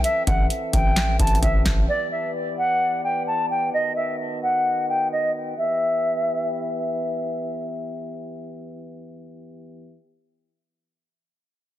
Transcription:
Already playing: E3 E5
0.04 C4 A4 E5, closed hi-hat
0.27 A1 F#5, kick, closed hi-hat
0.50 closed hi-hat
0.73 A1 G5, kick, closed hi-hat
0.96 snare, clap, closed hi-hat
1.19 A1 A5, kick, closed hi-hat
1.27 closed hi-hat
1.35 closed hi-hat
1.42 A1 E5, kick, closed hi-hat
1.66 A1, kick, snare, clap, closed hi-hat
1.89 B3 G4 D5
2.12 E5
2.58 F#5
3.04 G5
3.27 A5
3.50 G5
3.73 D#3 F#4 D#5
3.96 E5
4.43 F#5
4.89 G5
5.12 D#5
5.58 E3 B3 G4 E5

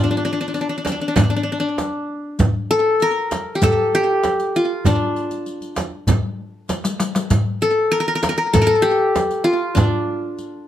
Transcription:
Already playing: F4 G4
0.04 D4
0.11 D4
0.17 D4
0.25 D4
0.33 D4
0.41 D4
0.48 D4
0.54 D4, riq, darbuka ka
0.61 D4
0.69 D4
0.78 D4
0.85 D4, riq, frame drum
0.92 D4
1.01 D4
1.08 D4
1.16 D4, riq, frame drum, darbuka dum
1.23 D4
1.30 D4
1.36 D4
1.43 D4
1.52 D4
1.60 D4
1.78 riq, darbuka tek, frame drum
1.94 darbuka ka
2.39 riq, darbuka dum, frame drum
2.71 A4
3.00 A#4, riq, darbuka ka
3.31 riq, darbuka tek, frame drum
3.55 G4
3.62 A4, riq, darbuka dum, frame drum
3.95 G4
4.23 riq, darbuka tek, frame drum
4.38 riq, darbuka ka
4.56 F4
4.85 D4, riq, darbuka dum, frame drum
5.15 riq, darbuka ka
5.30 riq, darbuka ka
5.46 riq
5.61 riq, darbuka ka
5.76 riq, darbuka tek, frame drum
5.92 darbuka ka
6.07 riq, darbuka dum, frame drum
6.69 riq, darbuka tek, frame drum
6.84 riq, darbuka ka
7.00 riq, darbuka tek
7.15 riq, darbuka ka
7.30 riq, darbuka dum, frame drum
7.62 A4
7.92 A#4, riq, darbuka ka
8.00 A#4
8.08 A#4
8.15 A#4
8.23 A#4, riq, darbuka tek, frame drum
8.29 A#4
8.38 A#4
8.53 A4, riq, darbuka dum, frame drum
8.62 A#4
8.67 A4
8.82 G4
9.16 riq, darbuka tek, frame drum
9.31 riq, darbuka ka
9.44 F4
9.75 D4, riq, darbuka dum, frame drum
10.38 riq, darbuka ka

